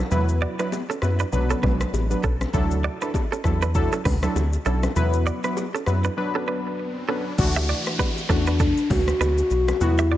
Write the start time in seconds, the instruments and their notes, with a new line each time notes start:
0.11 analog synth bass E2, synth keys F#3 B3 E4 B4, low conga, shaker
0.29 shaker
0.42 clean electric guitar F#4 D5
0.59 synth keys F#3 B3 E4 B4, clean electric guitar D4 B4, cross-stick, shaker
0.72 high bongo, shaker
0.90 clean electric guitar C#4 A4, shaker
1.02 analog synth bass F#2, synth keys F#3 B3 E4 B4, cross-stick, high bongo, shaker
1.19 clean electric guitar D4 B4, shaker
1.32 analog synth bass B1, synth keys F#3 B3 D4 B4, low conga, shaker
1.50 clean electric guitar C#4 A4, shaker
1.63 analog synth bass B1, clean electric guitar D4 B4, kick, low bongo, low conga
1.81 cross-stick, shaker
1.93 analog synth bass A1, high bongo, shaker
2.10 synth keys F#3 B3 D4 B4, shaker
2.23 analog synth bass B1, clean electric guitar C#4 A4, kick, shaker
2.41 cross-stick, low bongo, shaker
2.53 analog synth bass D2, synth keys F#3 D4 E4 A4, kick, low conga, shaker
2.71 shaker
2.84 clean electric guitar F#4 D5
3.01 synth keys F#3 D4 E4 A4, clean electric guitar D4 B4, cross-stick, shaker
3.14 kick, high bongo, shaker
3.32 clean electric guitar C#4 A4, shaker
3.44 analog synth bass E2, synth keys F#3 D4 E4 A4, kick, cross-stick, high bongo, shaker
3.62 clean electric guitar D4 B4, shaker
3.75 synth keys F#3 D4 E4 A4, kick, low conga, shaker
3.92 clean electric guitar C#4 A4, shaker
4.05 analog synth bass D2, clean electric guitar D4 B4, kick, open hi-hat, low bongo, low conga
4.22 synth keys F#3 D4 E4 A4, cross-stick, shaker
4.35 analog synth bass D2, high bongo, shaker
4.53 shaker
4.65 analog synth bass B1, synth keys F#3 D4 E4 A4, clean electric guitar C#4 A4, shaker
4.83 cross-stick, low bongo, shaker
4.96 analog synth bass E2, synth keys F#3 B3 E4 B4, riser, low conga, shaker
5.13 shaker
5.27 clean electric guitar F#4 D5, shaker
5.44 synth keys F#3 B3 E4 B4, clean electric guitar D4 B4, cross-stick, shaker
5.57 high bongo, shaker
5.75 clean electric guitar C#4 A4, shaker
5.86 analog synth bass F#2, synth keys F#3 B3 E4 B4, cross-stick, high bongo, shaker
6.04 clean electric guitar D4 B4, shaker
6.17 synth keys F#3 B3 D4 B4
6.35 clean electric guitar C#4 A4
6.48 clean electric guitar D4 B4
7.08 synth keys F#3 B3 D4 B4, clean electric guitar C#4 A4
7.38 analog synth bass D2, synth keys E3 A3 D4 F#4, kick, crash, downlifter, low conga, shaker
7.56 clean electric guitar G4 E5, shaker
7.69 clean electric guitar F#4 D5
7.86 cross-stick, shaker
7.99 clean electric guitar D4 B4, kick, high bongo, shaker
8.18 shaker
8.29 analog synth bass E2, synth keys E3 A3 D4 F#4, clean electric guitar C#4 A4, soft synth lead D4, kick, cross-stick, shaker
8.47 clean electric guitar D4 B4, shaker
8.60 soft synth lead D4, clean electric guitar D4 A4, kick, low conga, shaker
8.77 shaker
8.90 analog synth bass D2, soft synth lead F#4, kick, open hi-hat, low bongo, low conga
9.08 cross-stick, shaker
9.20 analog synth bass D2, clean electric guitar D4 B4, high bongo, shaker
9.38 shaker
9.50 analog synth bass B1, shaker
9.68 cross-stick, low bongo, shaker
9.81 analog synth bass E2, synth keys E3 F#3 B3 F#4, soft synth lead E4, low conga, shaker
9.98 clean electric guitar G4 E5, shaker
10.12 clean electric guitar F#4 D5